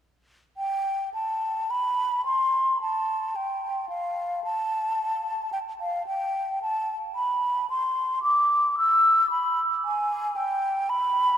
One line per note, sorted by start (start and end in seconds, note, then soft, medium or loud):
0.57 1.10 G5 medium
1.14 1.72 A5 medium
1.70 2.25 B5 medium
2.25 2.79 C6 medium
2.81 3.37 A5 medium
3.36 3.89 G5 medium
3.89 4.43 F5 medium
4.44 5.50 A5 medium
5.53 5.59 G5 medium
5.81 6.06 F5 medium
6.07 6.60 G5 medium
6.62 6.96 A5 medium
7.15 7.67 B5 medium
7.70 8.22 C6 medium
8.23 8.76 D6 medium
8.78 9.30 E6 medium
9.30 9.60 B5 medium
9.85 10.38 G#5 medium
10.36 10.91 G5 medium
10.89 11.38 B5 medium